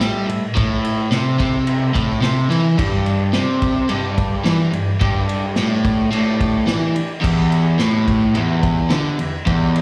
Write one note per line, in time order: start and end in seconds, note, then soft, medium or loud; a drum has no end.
0.00 0.28 G3 loud
0.00 0.45 E4 medium
0.00 0.45 A4 medium
0.00 0.46 E5 loud
0.00 snare loud
0.00 ride loud
0.26 0.50 A2 medium
0.26 ride medium
0.55 1.10 A2 loud
0.55 1.01 E4 medium
0.55 1.01 A4 medium
0.55 1.02 E5 medium
0.55 kick loud
0.55 ride loud
0.85 ride medium
1.11 1.37 C3 loud
1.11 1.57 E4 medium
1.11 1.57 A4 medium
1.11 1.58 E5 medium
1.11 snare loud
1.11 ride loud
1.38 1.93 C3 loud
1.38 kick medium
1.38 ride medium
1.66 2.12 E4 medium
1.66 2.12 A4 medium
1.66 2.13 E5 medium
1.66 ride loud
1.94 2.21 A2 loud
1.94 kick medium
1.94 ride medium
2.22 2.49 C3 loud
2.22 2.68 E4 medium
2.22 2.68 A4 medium
2.22 2.69 E5 loud
2.22 snare loud
2.22 ride loud
2.50 2.77 E3 loud
2.50 ride medium
2.77 3.33 G2 loud
2.77 3.23 D4 medium
2.77 3.23 G4 medium
2.77 3.24 D5 loud
2.77 kick loud
2.77 crash medium
3.06 ride medium
3.33 3.89 C3 loud
3.33 3.79 D4 medium
3.33 3.80 G4 medium
3.33 3.80 D5 medium
3.33 snare loud
3.33 ride loud
3.62 kick medium
3.62 ride medium
3.89 4.44 G2 loud
3.89 4.35 D4 medium
3.89 4.36 G4 medium
3.89 ride loud
3.93 4.37 D5 medium
4.18 kick medium
4.18 ride medium
4.44 4.72 E3 loud
4.44 4.91 D4 medium
4.44 4.91 G4 medium
4.44 4.92 D5 loud
4.44 snare loud
4.44 ride loud
4.72 4.95 G2 medium
4.72 ride medium
5.00 5.56 G2 loud
5.00 5.45 D4 medium
5.00 5.46 G4 medium
5.00 5.46 D5 loud
5.00 kick loud
5.00 ride loud
5.29 ride medium
5.56 6.10 A2 loud
5.56 6.02 D4 medium
5.56 6.02 G4 medium
5.56 6.02 D5 medium
5.56 snare loud
5.56 ride loud
5.85 kick medium
5.85 ride medium
6.12 6.67 A2 loud
6.12 6.58 D4 medium
6.12 6.58 G4 medium
6.12 6.59 D5 medium
6.12 ride loud
6.41 kick medium
6.41 ride medium
6.67 6.95 E3 loud
6.67 7.12 D4 medium
6.67 7.12 G4 medium
6.67 7.13 D5 loud
6.67 snare loud
6.67 ride loud
6.95 muted overdriven electric guitar stroke medium
6.95 ride medium
7.20 7.78 E2 loud
7.20 7.67 E4 medium
7.20 7.68 G4 medium
7.20 7.68 B4 loud
7.20 kick loud
7.20 crash loud
7.52 ride medium
7.77 8.34 A2 loud
7.77 8.24 E4 medium
7.77 8.24 G4 medium
7.77 8.24 B4 loud
7.77 snare loud
7.77 ride loud
8.08 kick medium
8.08 ride medium
8.34 8.90 E2 loud
8.34 8.80 E4 medium
8.34 8.80 G4 medium
8.34 8.80 B4 medium
8.34 ride loud
8.63 kick loud
8.63 ride medium
8.90 9.18 D3 loud
8.90 9.35 E4 medium
8.90 9.36 G4 medium
8.90 9.37 B4 loud
8.90 snare loud
8.90 ride loud
9.19 9.41 E2 medium
9.19 ride medium
9.46 9.82 E2 loud
9.46 9.82 E4 medium
9.46 9.82 G4 medium
9.46 9.82 B4 loud
9.46 kick loud
9.46 ride loud
9.76 ride medium